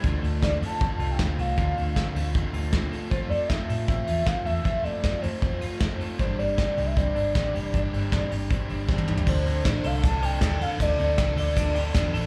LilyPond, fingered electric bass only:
\new Staff \with { instrumentName = "Fingered electric bass" } { \clef bass \time 4/4 \key d \dorian \tempo 4 = 156 d,8 d,4 f,4 c,8 d,8 c,8 | d,8 d,8 d8 d,8. r16 d,4 r8 | f,8 f,4 a,4 e,8 f,8 e,8 | f,8 f,8 f8 f,8. r16 f,4 r8 |
g,,8 g,,4 c,4 g,,8 a,,8 f,,8 | g,,8 g,,8 g,8 g,,8. r16 g,,4. | d,4 a,,8 c,4. d,8 f,8 | d,8 d,8 c,8 d,4. e,8 a,,8 | }